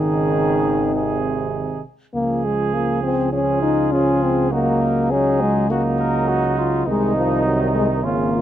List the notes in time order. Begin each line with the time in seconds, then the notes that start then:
Already playing: G#1 C#3 D#3 D#4 G#4
0.95 C3 G#4
2.14 C#2 F3 A#3 G#4
2.45 G#3
2.74 A#3
3.03 C4
3.33 F3 C#4 F4 G#4
3.62 D#4
3.92 F3 C#4 G#4
4.22 C4
4.51 F#3 A#3 D#4 F#4
4.81 A#4
5.10 F#3 C#4 D#4 G#4
5.41 G#3
5.70 F#3 A#3 D#4 F#4
5.99 A#4
6.29 F#4
6.59 F4
6.87 C2 D#3 G#3 D#4
7.16 F3
7.45 F#3
7.74 G#3
8.04 G#1 C#3 A#3 C#4 F4
8.34 F4